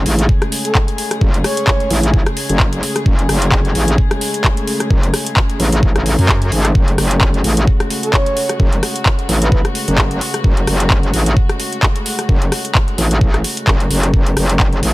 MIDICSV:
0, 0, Header, 1, 5, 480
1, 0, Start_track
1, 0, Key_signature, 3, "minor"
1, 0, Tempo, 461538
1, 1262, Time_signature, 4, 2, 24, 8
1, 15532, End_track
2, 0, Start_track
2, 0, Title_t, "Soft synth lead"
2, 0, Program_c, 0, 80
2, 676, Note_on_c, 0, 69, 93
2, 761, Note_off_c, 0, 69, 0
2, 1501, Note_on_c, 0, 73, 98
2, 1981, Note_off_c, 0, 73, 0
2, 8355, Note_on_c, 0, 69, 93
2, 8440, Note_off_c, 0, 69, 0
2, 8462, Note_on_c, 0, 73, 93
2, 8835, Note_off_c, 0, 73, 0
2, 9795, Note_on_c, 0, 71, 89
2, 9863, Note_off_c, 0, 71, 0
2, 9902, Note_on_c, 0, 71, 72
2, 9987, Note_off_c, 0, 71, 0
2, 15532, End_track
3, 0, Start_track
3, 0, Title_t, "String section"
3, 0, Program_c, 1, 48
3, 0, Note_on_c, 1, 49, 79
3, 0, Note_on_c, 1, 56, 72
3, 0, Note_on_c, 1, 57, 74
3, 0, Note_on_c, 1, 68, 85
3, 7006, Note_off_c, 1, 68, 0
3, 7022, Note_on_c, 1, 66, 87
3, 14687, Note_off_c, 1, 66, 0
3, 14703, Note_on_c, 1, 59, 86
3, 15532, Note_off_c, 1, 49, 0
3, 15532, Note_off_c, 1, 56, 0
3, 15532, Note_off_c, 1, 57, 0
3, 15532, Note_off_c, 1, 59, 0
3, 15532, End_track
4, 0, Start_track
4, 0, Title_t, "Wobble bass"
4, 0, Program_c, 2, 39
4, 62, Note_on_c, 2, 33, 96
4, 285, Note_off_c, 2, 33, 0
4, 1263, Note_on_c, 2, 30, 89
4, 1485, Note_off_c, 2, 30, 0
4, 1983, Note_on_c, 2, 33, 97
4, 2205, Note_off_c, 2, 33, 0
4, 2222, Note_on_c, 2, 33, 99
4, 2334, Note_off_c, 2, 33, 0
4, 2596, Note_on_c, 2, 30, 100
4, 2925, Note_off_c, 2, 30, 0
4, 3182, Note_on_c, 2, 30, 98
4, 3405, Note_off_c, 2, 30, 0
4, 3423, Note_on_c, 2, 30, 95
4, 3645, Note_off_c, 2, 30, 0
4, 3662, Note_on_c, 2, 30, 95
4, 3885, Note_off_c, 2, 30, 0
4, 3903, Note_on_c, 2, 33, 96
4, 4125, Note_off_c, 2, 33, 0
4, 5102, Note_on_c, 2, 30, 88
4, 5325, Note_off_c, 2, 30, 0
4, 5822, Note_on_c, 2, 33, 100
4, 6045, Note_off_c, 2, 33, 0
4, 6062, Note_on_c, 2, 33, 101
4, 6414, Note_off_c, 2, 33, 0
4, 6435, Note_on_c, 2, 42, 102
4, 6764, Note_off_c, 2, 42, 0
4, 6783, Note_on_c, 2, 32, 101
4, 7005, Note_off_c, 2, 32, 0
4, 7022, Note_on_c, 2, 30, 96
4, 7245, Note_off_c, 2, 30, 0
4, 7262, Note_on_c, 2, 30, 98
4, 7485, Note_off_c, 2, 30, 0
4, 7502, Note_on_c, 2, 30, 93
4, 7725, Note_off_c, 2, 30, 0
4, 7742, Note_on_c, 2, 33, 97
4, 7965, Note_off_c, 2, 33, 0
4, 8941, Note_on_c, 2, 30, 91
4, 9164, Note_off_c, 2, 30, 0
4, 9662, Note_on_c, 2, 33, 98
4, 9884, Note_off_c, 2, 33, 0
4, 9902, Note_on_c, 2, 33, 101
4, 10014, Note_off_c, 2, 33, 0
4, 10275, Note_on_c, 2, 30, 98
4, 10605, Note_off_c, 2, 30, 0
4, 10861, Note_on_c, 2, 30, 93
4, 11084, Note_off_c, 2, 30, 0
4, 11101, Note_on_c, 2, 30, 93
4, 11324, Note_off_c, 2, 30, 0
4, 11341, Note_on_c, 2, 30, 93
4, 11564, Note_off_c, 2, 30, 0
4, 11582, Note_on_c, 2, 33, 99
4, 11805, Note_off_c, 2, 33, 0
4, 12783, Note_on_c, 2, 30, 94
4, 13005, Note_off_c, 2, 30, 0
4, 13502, Note_on_c, 2, 33, 98
4, 13725, Note_off_c, 2, 33, 0
4, 13742, Note_on_c, 2, 33, 103
4, 13965, Note_off_c, 2, 33, 0
4, 14222, Note_on_c, 2, 30, 99
4, 14445, Note_off_c, 2, 30, 0
4, 14462, Note_on_c, 2, 30, 99
4, 14685, Note_off_c, 2, 30, 0
4, 14702, Note_on_c, 2, 30, 90
4, 14925, Note_off_c, 2, 30, 0
4, 14941, Note_on_c, 2, 30, 96
4, 15164, Note_off_c, 2, 30, 0
4, 15182, Note_on_c, 2, 30, 98
4, 15405, Note_off_c, 2, 30, 0
4, 15421, Note_on_c, 2, 33, 96
4, 15532, Note_off_c, 2, 33, 0
4, 15532, End_track
5, 0, Start_track
5, 0, Title_t, "Drums"
5, 61, Note_on_c, 9, 46, 108
5, 165, Note_off_c, 9, 46, 0
5, 194, Note_on_c, 9, 42, 66
5, 298, Note_off_c, 9, 42, 0
5, 302, Note_on_c, 9, 36, 119
5, 406, Note_off_c, 9, 36, 0
5, 435, Note_on_c, 9, 37, 85
5, 435, Note_on_c, 9, 42, 36
5, 539, Note_off_c, 9, 37, 0
5, 539, Note_off_c, 9, 42, 0
5, 542, Note_on_c, 9, 46, 112
5, 646, Note_off_c, 9, 46, 0
5, 676, Note_on_c, 9, 42, 61
5, 780, Note_off_c, 9, 42, 0
5, 782, Note_on_c, 9, 36, 116
5, 782, Note_on_c, 9, 39, 109
5, 886, Note_off_c, 9, 36, 0
5, 886, Note_off_c, 9, 39, 0
5, 916, Note_on_c, 9, 42, 52
5, 1020, Note_off_c, 9, 42, 0
5, 1022, Note_on_c, 9, 46, 103
5, 1126, Note_off_c, 9, 46, 0
5, 1156, Note_on_c, 9, 37, 69
5, 1156, Note_on_c, 9, 42, 65
5, 1260, Note_off_c, 9, 37, 0
5, 1260, Note_off_c, 9, 42, 0
5, 1262, Note_on_c, 9, 36, 116
5, 1366, Note_off_c, 9, 36, 0
5, 1395, Note_on_c, 9, 42, 52
5, 1499, Note_off_c, 9, 42, 0
5, 1501, Note_on_c, 9, 37, 83
5, 1501, Note_on_c, 9, 46, 101
5, 1605, Note_off_c, 9, 37, 0
5, 1605, Note_off_c, 9, 46, 0
5, 1635, Note_on_c, 9, 42, 70
5, 1739, Note_off_c, 9, 42, 0
5, 1741, Note_on_c, 9, 39, 121
5, 1742, Note_on_c, 9, 36, 117
5, 1845, Note_off_c, 9, 39, 0
5, 1846, Note_off_c, 9, 36, 0
5, 1875, Note_on_c, 9, 42, 36
5, 1979, Note_off_c, 9, 42, 0
5, 1981, Note_on_c, 9, 46, 108
5, 2085, Note_off_c, 9, 46, 0
5, 2116, Note_on_c, 9, 42, 65
5, 2220, Note_off_c, 9, 42, 0
5, 2222, Note_on_c, 9, 36, 117
5, 2326, Note_off_c, 9, 36, 0
5, 2355, Note_on_c, 9, 37, 83
5, 2355, Note_on_c, 9, 42, 37
5, 2459, Note_off_c, 9, 37, 0
5, 2459, Note_off_c, 9, 42, 0
5, 2462, Note_on_c, 9, 46, 104
5, 2566, Note_off_c, 9, 46, 0
5, 2595, Note_on_c, 9, 42, 65
5, 2699, Note_off_c, 9, 42, 0
5, 2701, Note_on_c, 9, 39, 106
5, 2702, Note_on_c, 9, 36, 116
5, 2805, Note_off_c, 9, 39, 0
5, 2806, Note_off_c, 9, 36, 0
5, 2835, Note_on_c, 9, 42, 55
5, 2939, Note_off_c, 9, 42, 0
5, 2942, Note_on_c, 9, 46, 100
5, 3046, Note_off_c, 9, 46, 0
5, 3076, Note_on_c, 9, 37, 70
5, 3076, Note_on_c, 9, 42, 66
5, 3180, Note_off_c, 9, 37, 0
5, 3180, Note_off_c, 9, 42, 0
5, 3182, Note_on_c, 9, 36, 115
5, 3286, Note_off_c, 9, 36, 0
5, 3316, Note_on_c, 9, 42, 54
5, 3420, Note_off_c, 9, 42, 0
5, 3422, Note_on_c, 9, 37, 84
5, 3422, Note_on_c, 9, 46, 108
5, 3526, Note_off_c, 9, 37, 0
5, 3526, Note_off_c, 9, 46, 0
5, 3556, Note_on_c, 9, 42, 70
5, 3660, Note_off_c, 9, 42, 0
5, 3661, Note_on_c, 9, 39, 122
5, 3662, Note_on_c, 9, 36, 112
5, 3765, Note_off_c, 9, 39, 0
5, 3766, Note_off_c, 9, 36, 0
5, 3795, Note_on_c, 9, 42, 39
5, 3899, Note_off_c, 9, 42, 0
5, 3901, Note_on_c, 9, 46, 101
5, 4005, Note_off_c, 9, 46, 0
5, 4035, Note_on_c, 9, 42, 67
5, 4139, Note_off_c, 9, 42, 0
5, 4141, Note_on_c, 9, 36, 114
5, 4245, Note_off_c, 9, 36, 0
5, 4275, Note_on_c, 9, 37, 86
5, 4275, Note_on_c, 9, 42, 39
5, 4379, Note_off_c, 9, 37, 0
5, 4379, Note_off_c, 9, 42, 0
5, 4382, Note_on_c, 9, 46, 106
5, 4486, Note_off_c, 9, 46, 0
5, 4515, Note_on_c, 9, 42, 66
5, 4619, Note_off_c, 9, 42, 0
5, 4622, Note_on_c, 9, 36, 112
5, 4622, Note_on_c, 9, 39, 110
5, 4726, Note_off_c, 9, 36, 0
5, 4726, Note_off_c, 9, 39, 0
5, 4756, Note_on_c, 9, 42, 57
5, 4860, Note_off_c, 9, 42, 0
5, 4861, Note_on_c, 9, 46, 97
5, 4965, Note_off_c, 9, 46, 0
5, 4995, Note_on_c, 9, 37, 69
5, 4995, Note_on_c, 9, 42, 68
5, 5099, Note_off_c, 9, 37, 0
5, 5099, Note_off_c, 9, 42, 0
5, 5102, Note_on_c, 9, 36, 116
5, 5206, Note_off_c, 9, 36, 0
5, 5236, Note_on_c, 9, 42, 55
5, 5340, Note_off_c, 9, 42, 0
5, 5342, Note_on_c, 9, 37, 80
5, 5342, Note_on_c, 9, 46, 105
5, 5446, Note_off_c, 9, 37, 0
5, 5446, Note_off_c, 9, 46, 0
5, 5475, Note_on_c, 9, 42, 74
5, 5579, Note_off_c, 9, 42, 0
5, 5581, Note_on_c, 9, 39, 122
5, 5582, Note_on_c, 9, 36, 120
5, 5685, Note_off_c, 9, 39, 0
5, 5686, Note_off_c, 9, 36, 0
5, 5715, Note_on_c, 9, 42, 38
5, 5819, Note_off_c, 9, 42, 0
5, 5821, Note_on_c, 9, 46, 107
5, 5925, Note_off_c, 9, 46, 0
5, 5954, Note_on_c, 9, 42, 72
5, 6058, Note_off_c, 9, 42, 0
5, 6062, Note_on_c, 9, 36, 116
5, 6166, Note_off_c, 9, 36, 0
5, 6194, Note_on_c, 9, 37, 84
5, 6194, Note_on_c, 9, 42, 40
5, 6298, Note_off_c, 9, 37, 0
5, 6298, Note_off_c, 9, 42, 0
5, 6301, Note_on_c, 9, 46, 103
5, 6405, Note_off_c, 9, 46, 0
5, 6434, Note_on_c, 9, 46, 56
5, 6538, Note_off_c, 9, 46, 0
5, 6540, Note_on_c, 9, 39, 118
5, 6542, Note_on_c, 9, 36, 118
5, 6644, Note_off_c, 9, 39, 0
5, 6646, Note_off_c, 9, 36, 0
5, 6674, Note_on_c, 9, 42, 58
5, 6778, Note_off_c, 9, 42, 0
5, 6780, Note_on_c, 9, 46, 100
5, 6884, Note_off_c, 9, 46, 0
5, 6914, Note_on_c, 9, 37, 68
5, 6914, Note_on_c, 9, 42, 70
5, 7018, Note_off_c, 9, 37, 0
5, 7018, Note_off_c, 9, 42, 0
5, 7022, Note_on_c, 9, 36, 124
5, 7126, Note_off_c, 9, 36, 0
5, 7154, Note_on_c, 9, 42, 54
5, 7258, Note_off_c, 9, 42, 0
5, 7261, Note_on_c, 9, 37, 85
5, 7261, Note_on_c, 9, 46, 107
5, 7365, Note_off_c, 9, 37, 0
5, 7365, Note_off_c, 9, 46, 0
5, 7394, Note_on_c, 9, 42, 69
5, 7498, Note_off_c, 9, 42, 0
5, 7500, Note_on_c, 9, 39, 126
5, 7502, Note_on_c, 9, 36, 118
5, 7604, Note_off_c, 9, 39, 0
5, 7606, Note_off_c, 9, 36, 0
5, 7635, Note_on_c, 9, 42, 41
5, 7739, Note_off_c, 9, 42, 0
5, 7740, Note_on_c, 9, 46, 109
5, 7844, Note_off_c, 9, 46, 0
5, 7874, Note_on_c, 9, 42, 72
5, 7978, Note_off_c, 9, 42, 0
5, 7982, Note_on_c, 9, 36, 119
5, 8086, Note_off_c, 9, 36, 0
5, 8114, Note_on_c, 9, 37, 79
5, 8114, Note_on_c, 9, 42, 39
5, 8218, Note_off_c, 9, 37, 0
5, 8218, Note_off_c, 9, 42, 0
5, 8221, Note_on_c, 9, 46, 114
5, 8325, Note_off_c, 9, 46, 0
5, 8354, Note_on_c, 9, 42, 67
5, 8458, Note_off_c, 9, 42, 0
5, 8461, Note_on_c, 9, 36, 117
5, 8461, Note_on_c, 9, 39, 120
5, 8565, Note_off_c, 9, 36, 0
5, 8565, Note_off_c, 9, 39, 0
5, 8594, Note_on_c, 9, 42, 57
5, 8698, Note_off_c, 9, 42, 0
5, 8701, Note_on_c, 9, 46, 104
5, 8805, Note_off_c, 9, 46, 0
5, 8834, Note_on_c, 9, 37, 68
5, 8834, Note_on_c, 9, 42, 68
5, 8938, Note_off_c, 9, 37, 0
5, 8938, Note_off_c, 9, 42, 0
5, 8941, Note_on_c, 9, 36, 124
5, 9045, Note_off_c, 9, 36, 0
5, 9075, Note_on_c, 9, 42, 54
5, 9179, Note_off_c, 9, 42, 0
5, 9182, Note_on_c, 9, 37, 78
5, 9182, Note_on_c, 9, 46, 112
5, 9286, Note_off_c, 9, 37, 0
5, 9286, Note_off_c, 9, 46, 0
5, 9315, Note_on_c, 9, 42, 69
5, 9419, Note_off_c, 9, 42, 0
5, 9421, Note_on_c, 9, 36, 119
5, 9421, Note_on_c, 9, 39, 127
5, 9525, Note_off_c, 9, 36, 0
5, 9525, Note_off_c, 9, 39, 0
5, 9555, Note_on_c, 9, 42, 37
5, 9659, Note_off_c, 9, 42, 0
5, 9661, Note_on_c, 9, 46, 114
5, 9765, Note_off_c, 9, 46, 0
5, 9794, Note_on_c, 9, 42, 69
5, 9898, Note_off_c, 9, 42, 0
5, 9901, Note_on_c, 9, 36, 127
5, 10005, Note_off_c, 9, 36, 0
5, 10035, Note_on_c, 9, 37, 75
5, 10035, Note_on_c, 9, 42, 39
5, 10139, Note_off_c, 9, 37, 0
5, 10139, Note_off_c, 9, 42, 0
5, 10140, Note_on_c, 9, 46, 113
5, 10244, Note_off_c, 9, 46, 0
5, 10274, Note_on_c, 9, 42, 65
5, 10378, Note_off_c, 9, 42, 0
5, 10380, Note_on_c, 9, 39, 119
5, 10381, Note_on_c, 9, 36, 122
5, 10484, Note_off_c, 9, 39, 0
5, 10485, Note_off_c, 9, 36, 0
5, 10514, Note_on_c, 9, 42, 56
5, 10618, Note_off_c, 9, 42, 0
5, 10621, Note_on_c, 9, 46, 109
5, 10725, Note_off_c, 9, 46, 0
5, 10754, Note_on_c, 9, 37, 64
5, 10754, Note_on_c, 9, 42, 70
5, 10858, Note_off_c, 9, 37, 0
5, 10858, Note_off_c, 9, 42, 0
5, 10861, Note_on_c, 9, 36, 123
5, 10965, Note_off_c, 9, 36, 0
5, 10994, Note_on_c, 9, 42, 52
5, 11098, Note_off_c, 9, 42, 0
5, 11101, Note_on_c, 9, 37, 76
5, 11101, Note_on_c, 9, 46, 115
5, 11205, Note_off_c, 9, 37, 0
5, 11205, Note_off_c, 9, 46, 0
5, 11235, Note_on_c, 9, 42, 65
5, 11339, Note_off_c, 9, 42, 0
5, 11340, Note_on_c, 9, 39, 125
5, 11341, Note_on_c, 9, 36, 123
5, 11444, Note_off_c, 9, 39, 0
5, 11445, Note_off_c, 9, 36, 0
5, 11475, Note_on_c, 9, 42, 36
5, 11579, Note_off_c, 9, 42, 0
5, 11581, Note_on_c, 9, 46, 115
5, 11685, Note_off_c, 9, 46, 0
5, 11714, Note_on_c, 9, 42, 65
5, 11818, Note_off_c, 9, 42, 0
5, 11821, Note_on_c, 9, 36, 127
5, 11925, Note_off_c, 9, 36, 0
5, 11954, Note_on_c, 9, 37, 80
5, 11954, Note_on_c, 9, 42, 38
5, 12058, Note_off_c, 9, 37, 0
5, 12058, Note_off_c, 9, 42, 0
5, 12060, Note_on_c, 9, 46, 110
5, 12164, Note_off_c, 9, 46, 0
5, 12195, Note_on_c, 9, 42, 62
5, 12299, Note_off_c, 9, 42, 0
5, 12300, Note_on_c, 9, 39, 122
5, 12302, Note_on_c, 9, 36, 127
5, 12404, Note_off_c, 9, 39, 0
5, 12406, Note_off_c, 9, 36, 0
5, 12435, Note_on_c, 9, 42, 52
5, 12539, Note_off_c, 9, 42, 0
5, 12541, Note_on_c, 9, 46, 114
5, 12645, Note_off_c, 9, 46, 0
5, 12675, Note_on_c, 9, 37, 64
5, 12675, Note_on_c, 9, 42, 66
5, 12779, Note_off_c, 9, 37, 0
5, 12779, Note_off_c, 9, 42, 0
5, 12782, Note_on_c, 9, 36, 125
5, 12886, Note_off_c, 9, 36, 0
5, 12914, Note_on_c, 9, 42, 51
5, 13018, Note_off_c, 9, 42, 0
5, 13021, Note_on_c, 9, 37, 76
5, 13021, Note_on_c, 9, 46, 111
5, 13125, Note_off_c, 9, 37, 0
5, 13125, Note_off_c, 9, 46, 0
5, 13154, Note_on_c, 9, 42, 64
5, 13258, Note_off_c, 9, 42, 0
5, 13260, Note_on_c, 9, 39, 121
5, 13262, Note_on_c, 9, 36, 124
5, 13364, Note_off_c, 9, 39, 0
5, 13366, Note_off_c, 9, 36, 0
5, 13394, Note_on_c, 9, 42, 34
5, 13498, Note_off_c, 9, 42, 0
5, 13501, Note_on_c, 9, 46, 109
5, 13605, Note_off_c, 9, 46, 0
5, 13635, Note_on_c, 9, 42, 64
5, 13739, Note_off_c, 9, 42, 0
5, 13742, Note_on_c, 9, 36, 127
5, 13846, Note_off_c, 9, 36, 0
5, 13875, Note_on_c, 9, 37, 81
5, 13875, Note_on_c, 9, 42, 36
5, 13979, Note_off_c, 9, 37, 0
5, 13979, Note_off_c, 9, 42, 0
5, 13981, Note_on_c, 9, 46, 116
5, 14085, Note_off_c, 9, 46, 0
5, 14115, Note_on_c, 9, 42, 63
5, 14219, Note_off_c, 9, 42, 0
5, 14222, Note_on_c, 9, 36, 124
5, 14222, Note_on_c, 9, 39, 109
5, 14326, Note_off_c, 9, 36, 0
5, 14326, Note_off_c, 9, 39, 0
5, 14356, Note_on_c, 9, 42, 51
5, 14460, Note_off_c, 9, 42, 0
5, 14462, Note_on_c, 9, 46, 111
5, 14566, Note_off_c, 9, 46, 0
5, 14595, Note_on_c, 9, 37, 63
5, 14595, Note_on_c, 9, 42, 64
5, 14699, Note_off_c, 9, 37, 0
5, 14699, Note_off_c, 9, 42, 0
5, 14702, Note_on_c, 9, 36, 116
5, 14806, Note_off_c, 9, 36, 0
5, 14836, Note_on_c, 9, 42, 51
5, 14940, Note_off_c, 9, 42, 0
5, 14942, Note_on_c, 9, 37, 83
5, 14942, Note_on_c, 9, 46, 107
5, 15046, Note_off_c, 9, 37, 0
5, 15046, Note_off_c, 9, 46, 0
5, 15075, Note_on_c, 9, 42, 63
5, 15179, Note_off_c, 9, 42, 0
5, 15181, Note_on_c, 9, 39, 118
5, 15182, Note_on_c, 9, 36, 123
5, 15285, Note_off_c, 9, 39, 0
5, 15286, Note_off_c, 9, 36, 0
5, 15315, Note_on_c, 9, 42, 34
5, 15419, Note_off_c, 9, 42, 0
5, 15421, Note_on_c, 9, 46, 114
5, 15525, Note_off_c, 9, 46, 0
5, 15532, End_track
0, 0, End_of_file